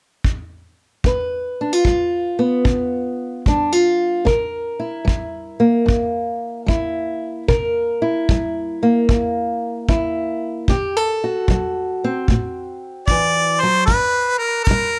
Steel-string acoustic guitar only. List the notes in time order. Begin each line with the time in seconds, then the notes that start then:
1.05 G2 B4
1.61 D4
1.73 F4
1.87 G3
2.39 B3
2.65 D3
3.47 G3 D4
3.73 F4
4.25 C3 A#4
4.79 E4
5.05 G3
5.60 A#3
5.86 G2
6.66 G3 E4
7.48 C3 A#4
8.02 E4
8.31 G3
8.83 A#3
9.10 G2
9.89 G3 E4
10.69 D3 G4
10.97 A4
11.24 F#4
11.50 F#3
12.04 C4
12.30 A2
13.10 E3
13.63 F#3
13.91 G2
14.71 G3